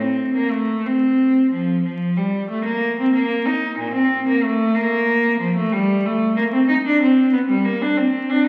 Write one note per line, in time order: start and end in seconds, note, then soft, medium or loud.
0.01 0.35 C4 medium
0.36 0.52 A#3 medium
0.51 0.84 A3 medium
0.86 1.51 C4 medium
1.52 1.83 F3 medium
1.84 2.16 F3 medium
2.17 2.48 G3 medium
2.49 2.64 A3 medium
2.64 2.95 A#3 medium
3.00 3.14 C4 medium
3.15 3.44 A#3 medium
3.46 3.77 D#4 medium
3.78 3.93 A#2 medium
3.94 4.25 C4 medium
4.28 4.42 A#3 medium
4.42 4.74 A3 medium
4.75 5.38 A#3 medium
5.39 5.54 F3 medium
5.57 5.71 A3 medium
5.72 6.03 G3 medium
6.05 6.36 A3 medium
6.37 6.43 A#3 medium
6.53 6.67 C4 medium
6.68 6.74 D#4 medium
6.86 7.00 D4 medium
7.02 7.32 C4 medium
7.33 7.39 B3 medium
7.49 7.65 G3 medium
7.65 7.81 A#3 medium
7.82 7.98 D4 medium
7.97 8.30 C4 medium
8.30 8.47 D4 medium